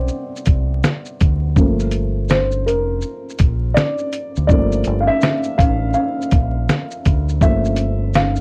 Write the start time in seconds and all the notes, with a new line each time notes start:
Already playing: C3 G3 B3 C5 D5 E5
0.08 shaker
0.36 shaker
0.46 C2, kick, closed hi-hat, shaker
0.84 snare, shaker
1.06 shaker
1.21 D2, kick, closed hi-hat, shaker
1.56 G1 F3 A3 A#3, kick, shaker
1.80 shaker
1.92 closed hi-hat, shaker
2.29 C5, snare, shaker
2.51 shaker
2.66 F1 A#4, closed hi-hat, shaker
3.02 shaker
3.30 shaker
3.39 A#1, kick, closed hi-hat, shaker
3.74 D5, snare, shaker
3.98 shaker
4.13 closed hi-hat, shaker
4.36 D2, shaker
4.47 G1 F3 A3 D5, kick, shaker
4.51 A#3
4.72 shaker
4.84 G1, closed hi-hat, shaker
5.00 F5
5.07 E5
5.21 snare, shaker
5.43 shaker
5.58 A1 F5, kick, closed hi-hat, shaker
5.94 F5, shaker
6.22 shaker
6.31 A#1, kick, closed hi-hat, shaker
6.69 snare, shaker
6.91 shaker
7.05 D2, kick, closed hi-hat, shaker
7.29 shaker
7.41 G1 F3 A3 A#3 E5, kick, shaker
7.65 shaker
7.76 closed hi-hat, shaker
8.14 F5, snare, shaker
8.36 shaker